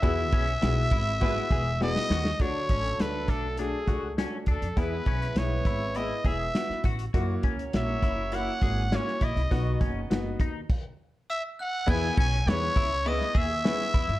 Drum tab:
CC |----------------|----------------|----------------|----------------|
RD |x-xxx-x-x-x-----|----------------|----------------|----------------|
HH |----------------|x-xxx-x-x-x-x-xx|x-xxx-x-x-x-x-xx|x-xxx-x-x-x-x-xx|
SD |----o----o--oooo|----o-------o---|----o-------oo--|----o-------oo--|
BD |o-o---o-o-o-----|o-o---o---o---o-|o-o---o---o---o-|o-o---o---o---o-|

CC |--------x-------|x---------------|
RD |----------------|--xxx-x-x-x-x-xx|
HH |x-x-x-x---------|----------------|
SD |----o-----------|----o----o--oo--|
BD |o-o---o-o-------|o-o---o---o---o-|